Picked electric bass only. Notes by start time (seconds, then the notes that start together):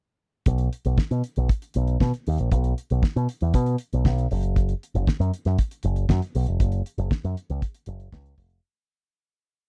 0.47 B1
0.85 B1
0.98 muted picked electric bass stroke
1.11 B2
1.37 B1
1.76 B1
2.01 B2
2.27 D#2
2.40 A#1
2.52 B1
2.91 B1
3.16 B2
3.42 E2
3.55 B2
3.93 B1
4.05 B1
4.31 F#1
4.95 F#1
5.20 F#2
5.46 F#2
5.84 F#1
6.10 F#2
6.35 B1
6.48 F1
6.61 F#1
6.98 F#1
7.24 F#2
7.50 C#2
7.87 F#1
8.13 C#2
8.38 F1